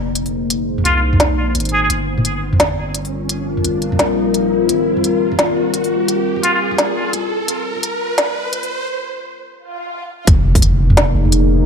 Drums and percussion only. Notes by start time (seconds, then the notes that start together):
0.15 closed hi-hat
0.26 open hi-hat
0.50 closed hi-hat
0.78 mid tom
0.85 closed hi-hat
1.13 mid tom
1.20 snare, closed hi-hat
1.55 closed hi-hat
1.60 closed hi-hat
1.65 closed hi-hat
1.69 closed hi-hat
1.90 closed hi-hat
2.18 mid tom
2.25 closed hi-hat
2.53 mid tom
2.60 snare, closed hi-hat
2.70 mid tom
2.94 closed hi-hat
3.05 open hi-hat
3.29 closed hi-hat
3.57 mid tom
3.64 closed hi-hat
3.82 closed hi-hat
3.92 mid tom
3.99 snare, closed hi-hat
4.34 closed hi-hat
4.69 closed hi-hat
4.97 mid tom
5.04 closed hi-hat
5.32 mid tom
5.39 snare, closed hi-hat
5.49 mid tom
5.74 closed hi-hat
5.84 open hi-hat
6.08 closed hi-hat
6.36 mid tom
6.43 closed hi-hat
6.71 mid tom
6.78 snare, closed hi-hat
7.13 closed hi-hat
7.48 closed hi-hat
7.76 mid tom
7.83 closed hi-hat
8.18 snare, closed hi-hat
8.28 mid tom
8.53 closed hi-hat
8.63 open hi-hat
10.27 kick, closed hi-hat
10.55 kick, mid tom, open hi-hat
10.62 closed hi-hat
10.90 mid tom
10.97 snare, closed hi-hat
11.25 mid tom
11.32 closed hi-hat